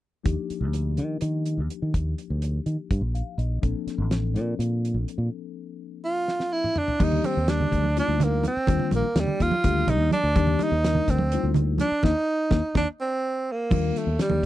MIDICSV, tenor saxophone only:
0, 0, Header, 1, 2, 480
1, 0, Start_track
1, 0, Tempo, 480384
1, 264, Time_signature, 7, 3, 24, 8
1, 14444, End_track
2, 0, Start_track
2, 0, Title_t, "Tenor saxophone"
2, 0, Program_c, 0, 66
2, 6042, Note_on_c, 0, 65, 91
2, 6520, Note_on_c, 0, 64, 89
2, 6535, Note_off_c, 0, 65, 0
2, 6776, Note_on_c, 0, 62, 79
2, 6791, Note_off_c, 0, 64, 0
2, 7026, Note_on_c, 0, 63, 89
2, 7041, Note_off_c, 0, 62, 0
2, 7246, Note_on_c, 0, 60, 75
2, 7261, Note_off_c, 0, 63, 0
2, 7485, Note_on_c, 0, 62, 86
2, 7500, Note_off_c, 0, 60, 0
2, 7961, Note_off_c, 0, 62, 0
2, 7986, Note_on_c, 0, 62, 83
2, 8230, Note_on_c, 0, 58, 80
2, 8245, Note_off_c, 0, 62, 0
2, 8453, Note_off_c, 0, 58, 0
2, 8466, Note_on_c, 0, 60, 88
2, 8898, Note_off_c, 0, 60, 0
2, 8949, Note_on_c, 0, 58, 79
2, 9193, Note_on_c, 0, 55, 81
2, 9208, Note_off_c, 0, 58, 0
2, 9418, Note_on_c, 0, 65, 95
2, 9433, Note_off_c, 0, 55, 0
2, 9891, Note_on_c, 0, 63, 84
2, 9906, Note_off_c, 0, 65, 0
2, 10114, Note_off_c, 0, 63, 0
2, 10120, Note_on_c, 0, 62, 86
2, 10617, Note_on_c, 0, 63, 89
2, 10632, Note_off_c, 0, 62, 0
2, 11089, Note_on_c, 0, 60, 74
2, 11104, Note_off_c, 0, 63, 0
2, 11529, Note_off_c, 0, 60, 0
2, 11794, Note_on_c, 0, 62, 84
2, 12028, Note_on_c, 0, 63, 93
2, 12043, Note_off_c, 0, 62, 0
2, 12747, Note_off_c, 0, 63, 0
2, 12762, Note_on_c, 0, 62, 81
2, 12866, Note_off_c, 0, 62, 0
2, 12997, Note_on_c, 0, 60, 81
2, 13506, Note_on_c, 0, 58, 79
2, 13521, Note_off_c, 0, 60, 0
2, 13970, Note_on_c, 0, 57, 66
2, 13985, Note_off_c, 0, 58, 0
2, 14197, Note_off_c, 0, 57, 0
2, 14203, Note_on_c, 0, 55, 80
2, 14444, Note_off_c, 0, 55, 0
2, 14444, End_track
0, 0, End_of_file